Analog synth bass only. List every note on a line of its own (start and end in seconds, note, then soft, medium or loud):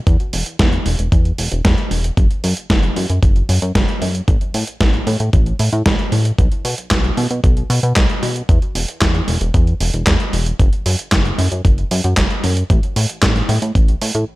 0.07 0.17 E2 loud
0.33 0.43 E1 medium
0.59 0.79 E2 medium
0.86 0.96 E1 medium
0.99 1.09 E1 medium
1.12 1.32 E2 medium
1.38 1.48 E1 medium
1.52 1.61 E1 medium
1.65 1.75 E2 loud
1.91 2.11 E1 medium
2.17 2.27 F#1 loud
2.44 2.54 F#2 medium
2.70 2.90 F#1 medium
2.96 3.06 F#2 medium
3.10 3.20 F#2 medium
3.23 3.42 F#1 medium
3.49 3.59 F#2 medium
3.62 3.72 F#2 medium
3.75 3.85 F#1 loud
4.02 4.21 F#2 medium
4.28 4.38 A1 loud
4.54 4.64 A2 medium
4.81 5.00 A1 medium
5.07 5.17 A2 medium
5.20 5.30 A2 medium
5.33 5.53 A1 medium
5.59 5.69 A2 medium
5.73 5.83 A2 medium
5.86 5.96 A1 loud
6.12 6.32 A2 medium
6.38 6.48 B1 loud
6.65 6.75 B2 medium
6.91 7.11 B1 medium
7.17 7.27 B2 medium
7.31 7.40 B2 medium
7.44 7.64 B1 medium
7.70 7.80 B2 medium
7.83 7.93 B2 medium
7.96 8.06 B1 loud
8.23 8.43 B2 medium
8.49 8.59 E2 loud
8.75 8.85 E1 medium
9.02 9.21 E2 medium
9.28 9.38 E1 medium
9.41 9.51 E1 medium
9.54 9.74 E2 medium
9.81 9.91 E1 medium
9.94 10.04 E1 medium
10.07 10.17 E2 loud
10.33 10.53 E1 medium
10.59 10.69 F#1 loud
10.86 10.96 F#2 medium
11.12 11.32 F#1 medium
11.38 11.48 F#2 medium
11.52 11.62 F#2 medium
11.65 11.85 F#1 medium
11.91 12.01 F#2 medium
12.04 12.14 F#2 medium
12.17 12.27 F#1 loud
12.44 12.64 F#2 medium
12.70 12.80 A1 loud
12.96 13.06 A2 medium
13.23 13.42 A1 medium
13.49 13.59 A2 medium
13.62 13.72 A2 medium
13.75 13.95 A1 medium
14.02 14.11 A2 medium
14.15 14.25 A2 medium